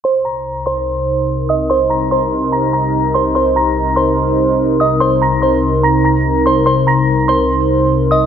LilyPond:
<<
  \new Staff \with { instrumentName = "Synth bell" } { \time 4/4 \key c \minor \tempo 4 = 145 <c'' c'''>8 <bes'' bes'''>4 <c'' c'''>2 <ees'' ees'''>8 | <c'' c'''>8 <bes'' bes'''>8 <c'' c'''>4 <bes'' bes'''>8 <bes'' bes'''>4 <c'' c'''>8 | <c'' c'''>8 <bes'' bes'''>4 <c'' c'''>2 <ees'' ees'''>8 | <c'' c'''>8 <bes'' bes'''>8 <c'' c'''>4 <bes'' bes'''>8 <bes'' bes'''>4 <c'' c'''>8 |
<c'' c'''>8 <bes'' bes'''>4 <c'' c'''>2 <ees'' ees'''>8 | }
  \new Staff \with { instrumentName = "Analog synth pad" } { \clef bass \time 4/4 \key c \minor <c, c ees' bes'>1~ | <c, c ees' bes'>1~ | <c, c ees' bes'>1~ | <c, c ees' bes'>1~ |
<c, c ees' bes'>1 | }
>>